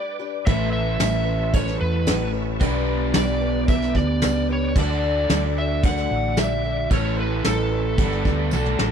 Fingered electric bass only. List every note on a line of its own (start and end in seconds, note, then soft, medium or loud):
0.46 0.97 A1 medium
1.00 1.77 A1 medium
1.81 2.09 E2 loud
2.07 2.58 A1 medium
2.61 3.11 B1 loud
3.16 3.92 B1 loud
3.95 4.24 D2 loud
4.23 4.72 C#2 loud
4.76 5.26 D2 loud
5.30 6.06 D2 loud
6.11 6.38 A1 loud
6.38 6.88 A#1 medium
6.91 7.41 A1 loud
7.46 7.96 A1 loud
7.98 8.23 G1 loud
8.25 8.50 D2 loud
8.53 8.77 B1 medium
8.79 8.92 A1 medium